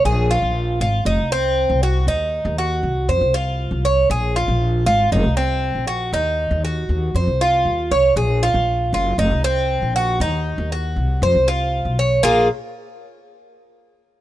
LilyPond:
<<
  \new Staff \with { instrumentName = "Cuban tres" } { \time 4/4 \key bes \minor \tempo 4 = 118 aes'8 f'4 f'8 ees'8 c'4 ges'8 | ees'4 ges'4 c''8 f'4 des''8 | aes'8 f'4 f'8 ees'8 c'4 ges'8 | ees'4 ges'4 c''8 f'4 des''8 |
aes'8 f'4 f'8 ees'8 c'4 ges'8 | ees'4 ges'4 c''8 f'4 des''8 | <bes f' aes'>8 r2. r8 | }
  \new Staff \with { instrumentName = "Upright bass" } { \clef bass \time 4/4 \key bes \minor bes,,8. bes,,8. aes,,8 f,,16 c,4 c,8. | ees,8. ees,8. c,8 f,16 c,4 c,8. | bes,,8. bes,,8. aes,,8 f,,16 c,4 bes,,8. | ees,8. ees,8. ees,8 f,16 c,8. ees,8 c,8 |
bes,,8. bes,,8. ges,,8 f,,16 c,4 bes,,8. | ees,8. ees,8. c,8 f,16 c,4 ces,8. | bes,,8 r2. r8 | }
>>